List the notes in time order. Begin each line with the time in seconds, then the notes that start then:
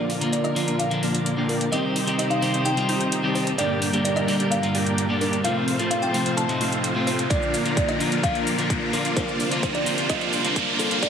Already playing: A#2 D3 F3 A#3 D4 F4 A#4 D5 F5, riser
0.10 open hi-hat
0.20 D3 F3 A#3 D4 F4 D5 A#5, closed hi-hat
0.33 D5, closed hi-hat
0.44 D#5, closed hi-hat
0.55 D3 F3 A#3 F4, open hi-hat
0.68 A#3 D4 F4 D5 F5, closed hi-hat
0.79 F5, closed hi-hat
0.90 D3 F3 A#3 D4, closed hi-hat
1.03 A#3 D4 F4 D5 F5, open hi-hat
1.15 closed hi-hat
1.26 closed hi-hat
1.37 D3 F3 A#3 D4 F4 D5 G5
1.49 A#4, open hi-hat
1.61 closed hi-hat
1.72 C3 D#3 G3 C4 D#4 G4 C5 D#5 G5, closed hi-hat
1.96 open hi-hat
2.07 D#3 G3 C4 D#4 G4 D#5 A#5, closed hi-hat
2.19 D#5, closed hi-hat
2.30 F5, closed hi-hat
2.41 D#3 G3 C4 G4, open hi-hat
2.54 C4 D#4 G4 D#5 G5, closed hi-hat
2.65 G5, closed hi-hat
2.76 D#3 G3 C4 F4, closed hi-hat
2.89 C4 D#4 G4 D#5 G5, open hi-hat
3.01 closed hi-hat
3.12 closed hi-hat
3.23 D#3 G3 C4 D#4 G4 D#5 A5
3.35 C5, open hi-hat
3.47 closed hi-hat
3.58 G2 D3 G3 A#3 D4 G4 A#4 D5 G5, closed hi-hat
3.82 open hi-hat
3.93 G2 D3 G3 A#3 D4 G4 D5 A#5, closed hi-hat
4.05 D5, closed hi-hat
4.16 D#5, closed hi-hat
4.27 G2 D3 G3 A#3 G4, open hi-hat
4.40 A#3 D4 G4 D5 G5, closed hi-hat
4.51 F5, closed hi-hat
4.62 G2 D3 G3 A#3 F4, closed hi-hat
4.75 A#3 D4 G4 D5 G5, open hi-hat
4.86 closed hi-hat
4.98 closed hi-hat
5.09 G2 D3 G3 A#3 D4 G4 D5 A5
5.21 A#4, open hi-hat
5.33 closed hi-hat
5.44 A2 C3 F3 A3 C4 F4 C5 F5, closed hi-hat
5.68 open hi-hat
5.79 C3 F3 A3 C4 F4 C5 A5, closed hi-hat
5.91 F5, closed hi-hat
6.02 G5, closed hi-hat
6.13 C3 F3 A3 F4, open hi-hat
6.26 A3 C4 F4 C5 F5, closed hi-hat
6.37 A5, closed hi-hat
6.48 C3 F3 A3 D#4, closed hi-hat
6.61 A3 C4 F4 C5 F5, open hi-hat
6.72 closed hi-hat
6.84 closed hi-hat
6.95 C3 F3 A3 C4 F4 C5 G5
7.07 C5, open hi-hat
7.19 closed hi-hat
7.30 A#2 D3 F3 A#3 D4 F4 A#4 D5, kick, closed hi-hat, shaker
7.42 shaker
7.54 open hi-hat, shaker
7.65 D3 F3 A#3 D4 F4 D5 A#5, closed hi-hat, shaker
7.77 D5, kick, closed hi-hat, shaker
7.88 D#5, closed hi-hat
7.99 D3 F3 A#3 F4, open hi-hat, shaker
8.12 A#3 D4 F4 D5 F5, closed hi-hat, shaker
8.23 D3 F3 A#3 D4 F4 D5 F5, kick, closed hi-hat, shaker
8.35 closed hi-hat
8.47 open hi-hat, shaker
8.58 D3 F3 A#3 D4 F4 D5 A#5, closed hi-hat, shaker
8.70 kick, closed hi-hat, shaker
8.93 D3 F3 A#3 F4 A#4, open hi-hat, shaker
9.05 A#3 D4 F4 D5 F5, closed hi-hat, shaker
9.16 C3 D3 F3 G3 A#3 D4 F4 C5 D5 F5, kick, closed hi-hat, shaker
9.29 shaker
9.40 open hi-hat, shaker
9.51 D3 F3 A#3 D4 F4 D5 A#5, closed hi-hat, shaker
9.63 C5, kick, closed hi-hat, shaker
9.75 D5, closed hi-hat
9.85 D3 F3 A#3 F4, open hi-hat, shaker
9.98 A#3 D4 F4 D5 F5, closed hi-hat, shaker
10.09 D3 F3 A#3 D4 F4 D5 D#5, kick, closed hi-hat, shaker
10.21 closed hi-hat
10.33 open hi-hat, shaker
10.44 D3 F3 A#3 D4 F4 D5 A#5, closed hi-hat, shaker
10.56 kick, closed hi-hat, shaker
10.79 D3 F3 A#3 F4 A4, open hi-hat, shaker
10.91 A#3 D4 F4 D5 F5, closed hi-hat, shaker
11.02 G2 D3 F3 A#3 D4 F4 A#4 D5 F5, kick, closed hi-hat, shaker